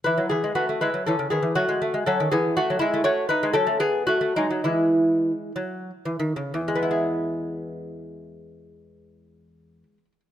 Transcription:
<<
  \new Staff \with { instrumentName = "Lute" } { \time 6/8 \key e \major \tempo 4. = 67 <e' b'>8 <b gis'>8 <a fis'>8 <e' b'>8 <cis' a'>8 <b gis'>8 | <a fis'>4 <cis' a'>8 <b gis'>8 <a fis'>8 <gis e'>8 | <fis' cis''>8 <dis' b'>8 <cis' a'>8 <b gis'>8 <a fis'>8 <fis dis'>8 | <gis e'>4. r4. |
<e, gis b e' gis'>2.~ | <e, gis b e' gis'>2. | }
  \new Staff \with { instrumentName = "Lute" } { \clef bass \time 6/8 \key e \major e16 fis16 e16 gis16 b16 a16 gis16 fis16 e16 cis16 dis16 e16 | fis16 gis16 a16 gis16 fis16 dis16 e8. fis16 r16 a16 | a8. gis16 fis16 a16 r8. a16 gis16 fis16 | e4. fis8. e16 dis16 cis16 |
r2. | r2. | }
>>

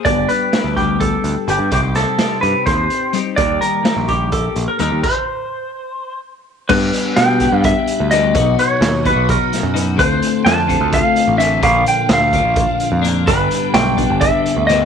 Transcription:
<<
  \new Staff \with { instrumentName = "Electric slide guitar" } { \time 7/8 \key g \mixolydian \tempo 4 = 127 d''8 b'4 g'8 a'4 g'8 | g'8 a'4 b'8 c''4 r8 | d''8 bes'4 g'8 a'8. bes'16 bes'8 | c''2~ c''8 r4 |
b'4 g''4 e''4 ees''8~ | ees''8 cis''4 b'8 bes'4 r8 | c''4 a''4 f''4 e''8 | f''8 g''8 f''2 r8 |
b'4 g''4 e''4 ees''8 | }
  \new Staff \with { instrumentName = "Tonewheel organ" } { \time 7/8 \key g \mixolydian << { r2. r8 | r2. r8 | r2. r8 | r2. r8 |
g'2.~ g'8 | fis'2.~ fis'8 | f'2.~ f'8~ | f'2.~ f'8 |
g'2.~ g'8 | } \\ { r2. r8 | r2. r8 | r2. r8 | r2. r8 |
d'2.~ d'8 | dis'2.~ dis'8 | d'2.~ d'8~ | d'2.~ d'8~ |
d'2.~ d'8 | } >> }
  \new Staff \with { instrumentName = "Tonewheel organ" } { \time 7/8 \key g \mixolydian r2. r8 | r2. r8 | r2. r8 | r2. r8 |
b2.~ b8~ | b2.~ b8 | c'2.~ c'8 | bes2.~ bes8 |
b2.~ b8 | }
  \new Staff \with { instrumentName = "Clean electric guitar" } { \time 7/8 \key g \mixolydian <g b d' g'>8 <b d' g'>8 <g b d' g'>8 <b d' g'>4. <g b d' g'>8 | <c g c' ees' g'>8 <c' ees' g'>8 <c g c' ees' g'>8 <c' ees' g'>4. <g c' ees' g'>8 | <ees g bes ees' g'>8 <bes ees' g'>8 <ees g bes ees' g'>8 <bes ees' g'>4. <g bes ees' g'>8 | r2. r8 |
<g b d' g'>4. <g b d' g'>4. <g b d' g'>8 | <b, fis b dis' fis'>4. <b, fis b dis' fis'>4. <b, fis b dis' fis'>8 | <d a c' f'>4. <d a c' f'>4. <d a c' f'>8 | <bes, d f bes d'>4. <bes, d f bes d'>4. <bes, d f bes d'>8 |
<g, d g b d'>4. <g, d g b d'>4. <g, d g b d'>8 | }
  \new Staff \with { instrumentName = "Picked electric bass" } { \clef bass \time 7/8 \key g \mixolydian g,,8 r8. d,4~ d,16 d,16 r16 g,,16 g,16 | c,16 c,8 r8. g,16 r16 ees,8 r4 | ees,8 r8. bes,,4~ bes,,16 bes,,16 r16 ees,16 ees,16 | r2. r8 |
g,8 r8 b,8. g,8 r8 d,8. | b,,8 r8 dis,8. b,,8 r8 fis,8. | d,8 r8 f,8. d,8 r8 a,,8. | bes,,8 r8 d,8. bes,,8 r8 f,8. |
g,,8 r8 b,,8. g,,8 r8 d,8. | }
  \new DrumStaff \with { instrumentName = "Drums" } \drummode { \time 7/8 <hh bd>8 hh8 <hh sn>8 <hh bd>8 <hh bd>8 hh8 hh8 | <hh bd>8 <hh sn>8 <hh sn>8 hh8 <hh bd sn>8 hh8 hh8 | <hh bd>8 hh8 <hh sn>8 <hh bd>8 <hh bd>8 hh8 hh8 | <cymc bd>4 r4 r4. |
<cymc bd>8 hh8 <hh sn>8 <hh bd>8 <hh bd>8 hh8 <hh sn>8 | <hh bd>8 hh8 <hh sn>8 <hh bd>8 <hh bd>8 <hh sn>8 hh8 | <hh bd>8 hh8 <hh sn>8 <hh bd>8 <hh bd>8 hh8 <hh sn>8 | <hh bd>8 hh8 <hh sn>8 <hh bd>8 <hh bd>8 hh8 hh8 |
<hh bd>8 hh8 <hh sn>8 <hh bd>8 <hh bd>8 hh8 <hh sn>8 | }
>>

